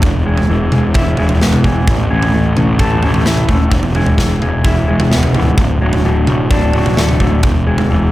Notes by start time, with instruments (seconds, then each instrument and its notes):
0.02 picked electric bass E1, clean electric guitar E2, kick, floor tom
0.26 clean electric guitar G#3
0.37 floor tom
0.49 picked electric bass E1, clean electric guitar E3
0.72 picked electric bass E1, clean electric guitar G#3, mid tom
0.94 picked electric bass E1, clean electric guitar E4, kick, floor tom
1.17 picked electric bass E1, clean electric guitar G#3, floor tom
1.29 floor tom
1.41 picked electric bass E1, clean electric guitar B3, snare
1.53 mid tom
1.64 picked electric bass E1, clean electric guitar E3, kick, floor tom
1.87 picked electric bass A1, clean electric guitar A2, kick, floor tom
2.10 picked electric bass A1, clean electric guitar C#4
2.22 floor tom
2.34 picked electric bass A1, clean electric guitar A3
2.57 picked electric bass A1, clean electric guitar C#4, mid tom
2.79 picked electric bass A1, clean electric guitar A4, kick, floor tom
3.03 picked electric bass A1, clean electric guitar C#4, floor tom
3.14 floor tom
3.26 picked electric bass A1, clean electric guitar E4, snare
3.37 mid tom
3.49 picked electric bass D#1, clean electric guitar A3, kick, floor tom
3.71 picked electric bass E1, clean electric guitar E2, kick, floor tom
3.83 floor tom
3.95 clean electric guitar G#3, floor tom
4.06 floor tom
4.17 picked electric bass E1, clean electric guitar E3, kick, snare
4.42 picked electric bass E1, clean electric guitar G#3, mid tom
4.65 picked electric bass E1, clean electric guitar E4, kick, floor tom
4.88 picked electric bass E1, clean electric guitar G#3
5.00 floor tom, mid tom
5.11 picked electric bass E1, clean electric guitar B3, snare
5.23 floor tom, mid tom
5.35 picked electric bass C#1, clean electric guitar E3, floor tom, mid tom
5.57 picked electric bass D1, clean electric guitar D2, kick, floor tom
5.81 picked electric bass D1, clean electric guitar F#3
5.93 floor tom
6.05 picked electric bass D1, clean electric guitar D3
6.27 picked electric bass D1, clean electric guitar F#3, mid tom
6.51 picked electric bass D1, clean electric guitar D4, kick, floor tom
6.73 picked electric bass D1, clean electric guitar F#3, floor tom
6.86 floor tom
6.97 picked electric bass D1, clean electric guitar A3, snare
7.09 mid tom
7.20 picked electric bass D1, clean electric guitar D3, kick, floor tom
7.43 picked electric bass E1, clean electric guitar E2, kick, floor tom
7.67 clean electric guitar G#3
7.78 floor tom
7.90 picked electric bass E1, clean electric guitar E3